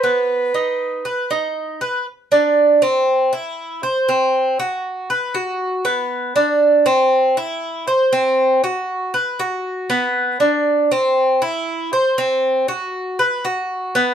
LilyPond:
<<
  \new Staff \with { instrumentName = "Clarinet" } { \time 4/4 \key b \phrygian \tempo 4 = 119 b'2. r4 | r1 | r1 | r1 |
r1 | r1 | r1 | }
  \new Staff \with { instrumentName = "Cuban tres" } { \time 4/4 \key b \phrygian b4 dis'4 b'8 dis'4 b'8 | r8 d'4 c'4 e'4 c''8 | c'4 fis'4 b'8 fis'4 b8~ | b8 d'4 c'4 e'4 c''8 |
c'4 fis'4 b'8 fis'4 b8~ | b8 d'4 c'4 e'4 c''8 | c'4 fis'4 b'8 fis'4 b8 | }
>>